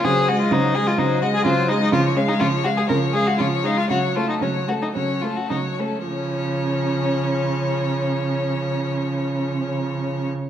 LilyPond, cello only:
\new Staff \with { instrumentName = "Cello" } { \clef bass \time 4/4 \key des \major \tempo 4 = 111 des4 des4 des4 des4 | des4 des4 des4 des4 | des4 des4 des4 des4 | des1~ |
des1 | }